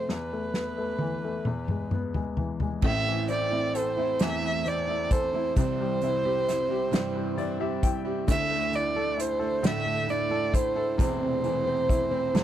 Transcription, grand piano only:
Already playing: C3 F3 A3 C4
0.09 E2
0.33 A3
0.55 B3
0.78 A3
1.01 E3
1.24 A3
1.47 E2
1.71 G#3
1.94 B3
2.15 G#3
2.38 E3
2.62 G#3
2.84 A1 A2
3.08 E3
3.29 C4
3.53 E4
3.76 A4
3.99 E4
4.22 E2 E3
4.44 E3
4.66 C4
4.89 E4
5.12 A4
5.34 E4
5.57 C2 C3
5.81 G3
6.03 E4
6.25 G4
6.48 E4
6.71 G4
6.93 G2 G3
7.16 G3
7.38 E4 D5
7.60 G4 E5
7.83 E4 G5
8.05 G4
8.28 D2 D3
8.51 A3
8.74 E4
8.96 A4
9.18 E4
9.39 A4
9.63 A2 A3
9.86 A3
10.08 E4
10.31 A4
10.54 E4
10.76 A4
10.98 E1 E2
11.20 C3
11.44 E3
11.66 C4
11.90 E4
12.11 C4
12.34 E1 E2

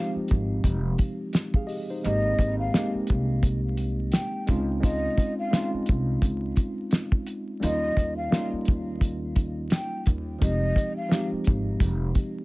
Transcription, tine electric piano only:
Already playing: F3 G#3 C4 D#4 G4
1.55 G#4 F5
1.67 G4 D#5
1.90 D#4 C5
2.04 G#3 A#3 C4 D#4
2.08 G4
2.75 G#3 A#3 C4 D#4 G4
4.47 G#3 C4 C#4 D#4 F4
4.80 G#3 C4 C#4 D#4 F4
5.51 G#3 C4 C#4 D#4 F4
7.60 G3 A#3 C#4 D#4 F4
8.31 G3 A#3 C#4 D#4 F4
10.39 F3 G#3 C4 D#4 G4
11.09 F3 G#3 C4 D#4 G4

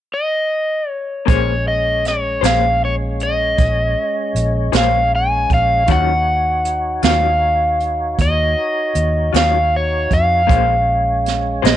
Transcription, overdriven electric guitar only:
0.14 D#5
0.90 C#5
1.30 C#5
1.68 D#5
2.08 C#5
2.46 F5
2.85 C#5
3.23 D#5
4.77 F5
5.15 G#5
5.54 F5
5.92 F#5
7.05 F5
8.21 D#5
9.37 F5
9.76 C#5
10.13 F5
11.66 D#5

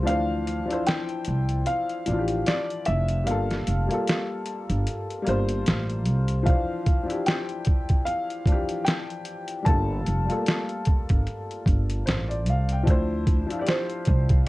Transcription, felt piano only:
0.06 F5
0.87 G5
1.67 F5
2.47 D5
2.86 E5
3.27 F5
6.46 F5
7.26 G5
8.05 F5
8.85 G5
9.65 A5
13.61 D5
13.68 C5

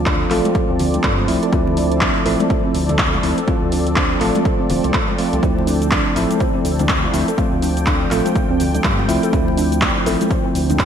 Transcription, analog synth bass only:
Already playing: D2
0.31 A1
0.70 D2
1.04 G2
1.28 C2
1.53 D2
2.26 A1
2.75 D2
3.23 D2
3.62 D2
4.21 A1
4.70 D1
4.84 C2
5.33 C2
5.43 D2
6.16 A1
6.65 D2
7.14 D2
7.52 D2
8.11 A1
8.50 D2
8.84 G2
9.09 C2
9.33 D2
10.06 A1
10.55 D2

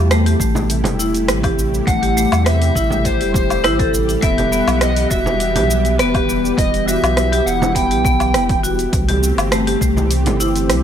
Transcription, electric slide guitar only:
1.87 F#5
2.46 E5
3.06 C5
3.35 C5
4.23 E5
4.82 D#5
5.11 E5
6.00 B4
6.58 D#5
6.88 E5
7.46 F#5
7.75 G5

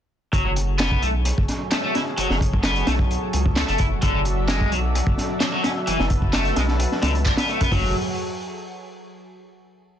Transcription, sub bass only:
0.33 F#1
1.02 B1
1.38 F#1
2.18 F#1
2.30 F#1
2.87 B1
3.34 C#2
3.69 F#1
3.80 F#1
4.03 F#1
4.72 B1
5.07 F#1
5.88 F#1
6.00 F#1
6.57 B1
7.03 C#2
7.61 F#2
7.72 F#1

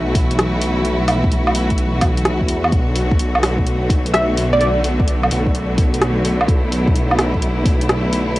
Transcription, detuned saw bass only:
Already playing: B1
1.55 B1
2.02 B1
2.49 E2
2.72 B1
3.44 B1
5.31 B1
7.19 B1

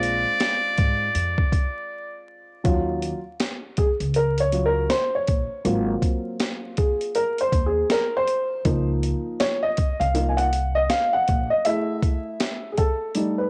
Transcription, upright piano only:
Already playing: G#3 C4 D4 F4
2.64 F#3 C#4 F4
3.78 G#4
4.16 A#4
4.40 C#5
4.52 F#3 C#4 F4
4.66 A#4
4.90 C5
5.15 C#5
5.65 F#3 A#3 C4 F4
6.78 G#4
7.15 A#4
7.41 C5
7.66 G#4
7.91 A#4
8.17 C5
8.65 F3 A#3 D#4
9.40 C#5
9.63 D#5
10.00 F5
10.14 F3 A#3 D#4
10.29 G#5
10.37 F#5
10.75 D#5
10.89 F5
11.13 F#5
11.50 D#5
11.65 A3 E4 G#4 E5
12.72 G#4
12.78 A4
13.15 G3 A3 D#4
13.38 B4

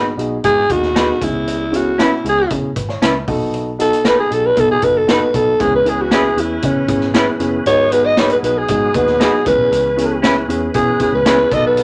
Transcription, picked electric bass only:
Already playing: G#1
0.17 B1
0.44 G#2
0.70 D#2
1.21 C#2
2.24 C#2
2.51 C#3
2.76 G#1
3.02 C#2
3.28 B1
4.31 B1
4.57 B2
4.82 F#1
5.34 B1
5.60 C#2
6.37 E2
6.63 C#3
6.88 G#1
7.40 F#1
7.66 G#1
8.43 B1
8.69 G#2
8.94 D#2
9.46 C#2
9.59 B1
9.71 C#2
10.48 E2
10.75 B2
11.12 C#2
11.51 B1

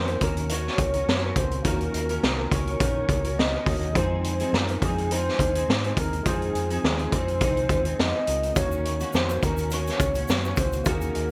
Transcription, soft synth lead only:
Already playing: C5
0.23 A#4
0.51 C#5
1.38 C5
1.67 A#4
2.52 C#5
3.39 D#5
3.97 C5
4.55 A#4
4.84 G#4
5.12 C5
5.99 A#4
6.27 G#4
7.13 C5
8.00 D#5
8.57 C#5
9.15 C5
9.44 A#4
9.73 C#5
10.59 C5
10.88 A#4

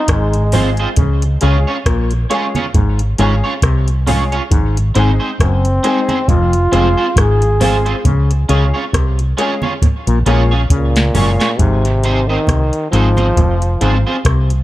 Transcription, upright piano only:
0.53 G#3 C4 F4 G#4
1.41 G#3 C#4 F4 G#4
2.30 G#3 C#4 F4 G#4
3.18 G#3 C#4 F4 G#4
4.07 G#3 C#4 F4 G#4
4.95 G#3 C4 D#4 G#4
5.84 G#3 C4 D#4 G#4
6.72 G#3 C4 F4 G#4
7.60 G#3 C4 F4 G#4
8.49 G#3 C#4 F4 G#4
9.38 G#3 C#4 F4 G#4
10.26 G#3 C#4 F4 G#4
11.14 G#3 C#4 F4 G#4

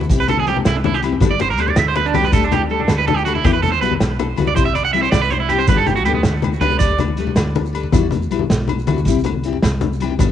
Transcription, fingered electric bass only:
Already playing: D2
0.09 C2
0.66 C2
1.21 G1
1.57 D2
1.77 D2
2.14 C2
2.32 D2
2.89 D2
3.45 E2
3.82 B1
4.00 B1
4.38 C#2
4.57 C2
5.12 C2
5.68 G1
6.05 D2
6.23 D2
6.60 C#2
6.80 D2
7.35 D2
7.93 E2
8.32 B1
8.51 B1
8.88 D2
9.06 C2
9.63 C2
10.19 G1

